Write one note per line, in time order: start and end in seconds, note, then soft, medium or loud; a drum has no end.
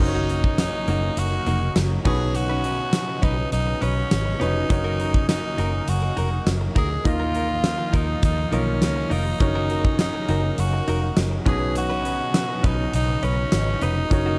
0.00 0.70 F#1 loud
0.00 7.01 C#3 medium
0.00 7.01 F#3 medium
0.00 2.03 A#3 medium
0.00 2.01 C#4 medium
0.00 0.55 D#4 loud
0.00 2.01 D#4 medium
0.00 7.01 D#4 loud
0.00 2.02 F#4 medium
0.00 2.02 A#4 medium
0.00 0.07 C5 medium
0.00 kick loud
0.08 2.05 C#5 medium
0.15 0.28 A#3 medium
0.15 0.29 D#4 medium
0.15 0.30 F#4 medium
0.29 0.45 A#3 medium
0.29 0.44 D#4 medium
0.29 0.43 F#4 medium
0.29 closed hi-hat medium
0.44 muted clean electric guitar stroke medium
0.44 kick medium
0.58 1.20 D#4 loud
0.58 muted clean electric guitar stroke medium
0.58 snare loud
0.58 closed hi-hat loud
0.58 tambourine medium
0.74 muted clean electric guitar stroke soft
0.88 1.09 F#1 loud
0.88 1.08 A#3 medium
0.88 1.03 D#4 medium
0.88 1.02 F#4 loud
0.88 closed hi-hat medium
1.03 muted clean electric guitar stroke soft
1.17 1.38 F#1 medium
1.17 1.77 F#4 loud
1.17 closed hi-hat loud
1.32 muted clean electric guitar stroke soft
1.46 1.68 F1 medium
1.46 1.67 A#3 medium
1.46 1.61 D#4 medium
1.46 1.60 F#4 medium
1.46 closed hi-hat medium
1.62 muted clean electric guitar stroke soft
1.76 1.97 F#1 loud
1.76 muted clean electric guitar stroke soft
1.76 snare loud
1.76 closed hi-hat medium
1.76 tambourine medium
1.91 muted clean electric guitar stroke soft
2.05 2.79 B1 loud
2.05 2.90 B2 medium
2.05 4.68 B3 medium
2.05 4.36 C#4 medium
2.05 2.26 C#4 medium
2.05 4.37 D#4 medium
2.05 2.20 D#4 medium
2.05 4.37 F#4 medium
2.05 2.37 G#4 loud
2.05 4.37 B4 medium
2.05 2.19 B4 loud
2.05 4.38 C#5 medium
2.05 kick loud
2.05 crash medium
2.20 muted clean electric guitar stroke medium
2.35 3.22 F#4 loud
2.35 muted clean electric guitar stroke soft
2.35 closed hi-hat medium
2.49 2.63 C#4 medium
2.49 2.64 D#4 medium
2.49 2.65 B4 medium
2.64 2.80 C#4 medium
2.64 2.79 D#4 medium
2.64 2.78 B4 medium
2.64 closed hi-hat medium
2.93 muted clean electric guitar stroke soft
2.93 snare loud
2.93 closed hi-hat loud
2.93 tambourine medium
3.08 muted clean electric guitar stroke medium
3.22 3.44 B1 loud
3.22 3.43 C#4 medium
3.22 3.50 D#4 medium
3.22 3.37 D#4 loud
3.22 3.36 B4 loud
3.22 kick medium
3.22 closed hi-hat medium
3.52 3.74 B1 loud
3.52 3.84 D#4 loud
3.52 closed hi-hat loud
3.67 muted clean electric guitar stroke soft
3.81 4.03 B1 medium
3.81 4.02 C#4 medium
3.81 4.42 C#4 loud
3.81 3.96 D#4 medium
3.81 3.95 B4 loud
3.81 closed hi-hat medium
3.96 muted clean electric guitar stroke soft
4.11 4.33 G#1 medium
4.11 muted clean electric guitar stroke soft
4.11 snare loud
4.11 closed hi-hat medium
4.11 tambourine medium
4.25 muted clean electric guitar stroke soft
4.40 4.62 F1 medium
4.40 4.61 C#4 medium
4.40 4.67 C#4 medium
4.40 5.28 D#4 loud
4.40 4.55 D#4 medium
4.40 4.68 D#4 soft
4.40 4.68 F#4 soft
4.40 4.54 B4 medium
4.40 4.70 B4 soft
4.40 4.70 C#5 medium
4.40 closed hi-hat medium
4.55 muted clean electric guitar stroke soft
4.69 5.40 F#1 loud
4.69 9.37 A#3 medium
4.69 7.01 C#4 medium
4.69 7.01 D#4 medium
4.69 7.01 F#4 medium
4.69 7.02 A#4 medium
4.69 7.02 C#5 medium
4.69 muted clean electric guitar stroke soft
4.69 kick loud
4.69 closed hi-hat medium
4.84 4.98 D#4 medium
4.84 4.99 F#4 medium
4.84 5.00 A#4 medium
4.99 5.15 D#4 medium
4.99 5.15 F#4 medium
4.99 5.13 A#4 medium
4.99 closed hi-hat medium
5.14 muted clean electric guitar stroke soft
5.14 kick medium
5.29 5.90 D#4 loud
5.29 muted clean electric guitar stroke soft
5.29 snare loud
5.29 closed hi-hat loud
5.29 tambourine medium
5.44 muted clean electric guitar stroke soft
5.58 5.80 F#1 loud
5.58 5.79 D#4 medium
5.58 5.73 F#4 loud
5.58 5.72 A#4 loud
5.58 closed hi-hat medium
5.73 muted clean electric guitar stroke soft
5.88 6.09 F#1 loud
5.88 6.47 F#4 medium
5.88 closed hi-hat loud
6.03 muted clean electric guitar stroke medium
6.17 6.39 F1 medium
6.17 6.37 D#4 medium
6.17 6.31 F#4 medium
6.17 6.30 A#4 loud
6.17 closed hi-hat medium
6.31 muted clean electric guitar stroke soft
6.47 6.68 F#1 loud
6.47 snare loud
6.47 closed hi-hat medium
6.47 tambourine medium
6.61 muted clean electric guitar stroke medium
6.75 6.97 D2 loud
6.75 6.96 D#4 medium
6.75 6.90 F#4 medium
6.75 7.10 G#4 loud
6.75 6.89 A#4 loud
6.75 kick medium
6.75 closed hi-hat medium
6.90 muted clean electric guitar stroke medium
7.04 7.75 D#2 loud
7.04 7.90 D#3 medium
7.04 9.38 D#3 medium
7.04 9.38 F3 medium
7.04 8.49 A#3 medium
7.04 8.49 D#4 medium
7.04 8.49 F4 medium
7.04 9.38 F4 loud
7.04 7.97 F4 loud
7.04 8.50 A#4 medium
7.04 8.50 D#5 medium
7.04 muted clean electric guitar stroke soft
7.04 kick loud
7.04 closed hi-hat medium
7.20 7.33 D#4 medium
7.20 7.34 F4 medium
7.20 7.35 A#4 medium
7.34 7.51 D#4 medium
7.34 7.49 F4 medium
7.34 7.48 A#4 medium
7.34 closed hi-hat medium
7.63 muted clean electric guitar stroke soft
7.63 snare loud
7.63 closed hi-hat loud
7.63 tambourine medium
7.78 muted clean electric guitar stroke soft
7.93 8.15 D#2 loud
7.93 8.14 D#4 medium
7.93 8.24 D#4 medium
7.93 8.08 F4 loud
7.93 8.07 A#4 loud
7.93 kick medium
7.93 closed hi-hat medium
8.08 muted clean electric guitar stroke medium
8.23 8.44 D#2 loud
8.23 8.55 D#4 loud
8.23 kick loud
8.23 closed hi-hat loud
8.37 muted clean electric guitar stroke soft
8.52 8.82 B1 medium
8.52 9.40 A#3 soft
8.52 9.14 C#4 medium
8.52 8.73 D#4 loud
8.52 9.39 D#4 soft
8.52 9.41 F4 soft
8.52 8.66 F4 loud
8.52 9.40 A#4 soft
8.52 8.65 A#4 loud
8.52 9.41 D#5 medium
8.52 closed hi-hat medium
8.67 muted clean electric guitar stroke soft
8.81 9.03 C#2 medium
8.81 muted clean electric guitar stroke soft
8.81 snare loud
8.81 closed hi-hat loud
8.81 tambourine medium
8.96 muted clean electric guitar stroke medium
9.10 9.32 F1 medium
9.10 9.31 D#4 medium
9.10 10.00 D#4 loud
9.10 9.25 F4 loud
9.10 9.24 A#4 medium
9.10 open hi-hat medium
9.25 muted clean electric guitar stroke medium
9.40 10.10 F#1 loud
9.40 14.39 C#3 medium
9.40 14.39 F#3 medium
9.40 11.44 A#3 medium
9.40 11.42 C#4 medium
9.40 11.42 D#4 medium
9.40 14.39 D#4 medium
9.40 11.43 F#4 medium
9.40 11.43 A#4 medium
9.40 11.43 C#5 medium
9.40 muted clean electric guitar stroke soft
9.40 kick loud
9.40 closed hi-hat medium
9.55 9.69 D#4 medium
9.55 9.70 F#4 medium
9.55 9.70 A#4 medium
9.70 9.86 D#4 medium
9.70 9.85 F#4 medium
9.70 9.84 A#4 medium
9.70 closed hi-hat medium
9.85 muted clean electric guitar stroke soft
9.85 kick medium
9.99 10.61 D#4 medium
9.99 muted clean electric guitar stroke soft
9.99 snare loud
9.99 closed hi-hat medium
9.99 tambourine medium
10.15 muted clean electric guitar stroke soft
10.29 10.50 F#1 loud
10.29 10.49 D#4 medium
10.29 10.44 F#4 medium
10.29 10.43 A#4 loud
10.29 closed hi-hat medium
10.44 muted clean electric guitar stroke medium
10.58 10.80 F#1 loud
10.58 11.18 F#4 medium
10.58 closed hi-hat loud
10.73 muted clean electric guitar stroke medium
10.88 11.09 F1 medium
10.88 11.08 D#4 medium
10.88 11.02 F#4 medium
10.88 11.01 A#4 loud
10.88 closed hi-hat medium
11.02 muted clean electric guitar stroke medium
11.17 11.38 F#1 medium
11.17 muted clean electric guitar stroke soft
11.17 snare loud
11.17 closed hi-hat medium
11.17 tambourine medium
11.31 muted clean electric guitar stroke medium
11.45 12.21 B1 loud
11.45 12.31 B2 medium
11.45 14.09 B3 medium
11.45 13.77 C#4 medium
11.45 11.67 C#4 medium
11.45 13.77 D#4 medium
11.45 11.60 D#4 medium
11.45 13.78 F#4 medium
11.45 11.75 G#4 loud
11.45 13.78 B4 medium
11.45 11.59 B4 loud
11.45 13.78 C#5 medium
11.45 kick loud
11.45 closed hi-hat medium
11.61 muted clean electric guitar stroke soft
11.75 12.67 F#4 loud
11.75 muted clean electric guitar stroke soft
11.75 closed hi-hat medium
11.90 12.03 C#4 medium
11.90 12.04 D#4 medium
11.90 12.04 B4 medium
12.04 12.21 C#4 medium
12.04 12.19 D#4 medium
12.04 12.18 B4 medium
12.04 closed hi-hat medium
12.19 muted clean electric guitar stroke soft
12.34 muted clean electric guitar stroke soft
12.34 snare loud
12.34 closed hi-hat loud
12.34 tambourine medium
12.49 muted clean electric guitar stroke medium
12.63 12.85 B1 loud
12.63 12.84 C#4 medium
12.63 12.78 D#4 medium
12.63 12.94 D#4 medium
12.63 12.77 B4 loud
12.63 kick medium
12.63 closed hi-hat medium
12.78 muted clean electric guitar stroke medium
12.93 13.15 B1 loud
12.93 13.26 D#4 loud
12.93 closed hi-hat loud
13.08 muted clean electric guitar stroke soft
13.23 13.44 B1 medium
13.23 13.43 C#4 medium
13.23 13.84 C#4 loud
13.23 13.38 D#4 medium
13.23 13.36 B4 loud
13.23 closed hi-hat medium
13.38 muted clean electric guitar stroke medium
13.52 13.74 G#1 medium
13.52 muted clean electric guitar stroke soft
13.52 snare loud
13.52 closed hi-hat medium
13.52 tambourine medium
13.67 muted clean electric guitar stroke soft
13.81 14.03 F1 medium
13.81 14.02 C#4 medium
13.81 13.97 D#4 medium
13.81 14.39 D#4 loud
13.81 13.95 B4 loud
13.81 closed hi-hat medium
13.97 muted clean electric guitar stroke soft
14.10 14.39 F#1 loud
14.10 14.39 A#3 medium
14.10 14.39 C#4 medium
14.10 14.39 D#4 medium
14.10 14.39 F#4 medium
14.10 14.39 A#4 medium
14.10 14.39 C#5 medium
14.10 muted clean electric guitar stroke soft
14.10 kick loud
14.10 closed hi-hat medium
14.26 14.39 A#3 medium
14.26 14.39 D#4 medium
14.26 14.39 F#4 medium